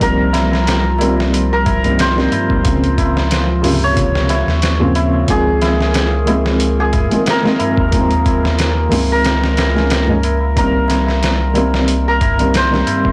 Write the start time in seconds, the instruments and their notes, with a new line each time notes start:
Already playing: ambient pad F3 F4
0.00 analog synth bass C2, upright piano D#3 G3 A#3 C4, santur A#4, kick, closed hi-hat, tabla na
0.33 snare, closed hi-hat, tabla na
0.52 snare, tabla na
0.67 snare, closed hi-hat, tabla na
0.98 upright piano D#3 G3 A#3 C4, closed hi-hat, tabla na
1.16 snare, tabla na
1.33 closed hi-hat, tabla na
1.53 santur A#4
1.66 kick, closed hi-hat, tabla na, tabla ge
1.83 upright piano D#3 G3 A#3 C4, closed hi-hat, tabla na
1.98 santur C5, snare, closed hi-hat, tabla na
2.16 upright piano D#3 G3 A#3 C4, snare
2.32 closed hi-hat, tabla na, tabla ge
2.50 analog synth bass C#2, kick, tabla na
2.63 upright piano C#3 F3 A#3 C4, kick, closed hi-hat, tabla na
2.84 closed hi-hat
2.98 kick, closed hi-hat, tabla na
3.16 snare, tabla na
3.31 snare, closed hi-hat
3.62 upright piano C3 C#3 F3 A#3, open hi-hat, tabla na, tabla ge
3.82 santur C#5, tabla na
3.97 kick, closed hi-hat, tabla na
4.15 snare
4.29 snare, closed hi-hat, tabla na
4.48 analog synth bass D#2, snare, tabla na
4.62 snare, closed hi-hat, tabla na
4.79 upright piano C#3 F3 A#3 C4, tabla ge
4.95 closed hi-hat, tabla na
5.13 tabla na
5.27 analog synth bass C#2, upright piano D#3 F3 G#3 C4, ambient pad A#3 A#4, santur G#4, kick, closed hi-hat, tabla na
5.62 snare, closed hi-hat, tabla na
5.79 snare, tabla na
5.93 snare, closed hi-hat, tabla na
6.26 upright piano D#3 F3 G#3, closed hi-hat, tabla na
6.30 upright piano C4
6.45 snare, tabla na
6.59 closed hi-hat, tabla na
6.80 santur G#4
6.93 kick, closed hi-hat, tabla na, tabla ge
7.10 upright piano D#3 F3 G#3 C4, closed hi-hat, tabla na
7.26 santur A#4, snare, closed hi-hat, tabla na
7.43 upright piano D#3 F3 G#3 C4, snare
7.59 closed hi-hat, tabla na, tabla ge
7.76 analog synth bass D#2, kick, tabla na
7.91 upright piano D#3 F3 G#3 C4, kick, closed hi-hat, tabla na
8.11 closed hi-hat
8.26 kick, closed hi-hat, tabla na
8.43 snare, tabla na
8.57 snare, closed hi-hat, tabla na
8.89 analog synth bass C#2, upright piano D#3 F3 G#3, open hi-hat, tabla na, tabla ge
8.93 upright piano C4
9.09 santur A#4, tabla na
9.24 snare, closed hi-hat, tabla na
9.44 snare
9.57 snare, closed hi-hat, tabla na
9.74 upright piano D#3 F3 G#3 C#4, snare, tabla na
9.90 snare, closed hi-hat, tabla na
10.08 upright piano D#3 F3 G#3 C#4, tabla ge
10.23 closed hi-hat, tabla na
10.41 tabla na
10.55 analog synth bass C2, upright piano D#3 G3 A#3 C4, santur A#4, kick, closed hi-hat, tabla na
10.88 snare, closed hi-hat, tabla na
11.07 snare, tabla na
11.22 snare, closed hi-hat, tabla na
11.53 upright piano D#3 G3 A#3, closed hi-hat, tabla na
11.58 upright piano C4
11.74 snare, tabla na
11.88 closed hi-hat, tabla na
12.08 santur A#4
12.21 kick, closed hi-hat, tabla na, tabla ge
12.38 upright piano D#3 G3 A#3 C4, closed hi-hat, tabla na
12.54 santur C5, snare, closed hi-hat, tabla na
12.71 upright piano D#3 G3 A#3 C4, snare
12.87 closed hi-hat, tabla na, tabla ge
13.05 analog synth bass C#2, kick, tabla na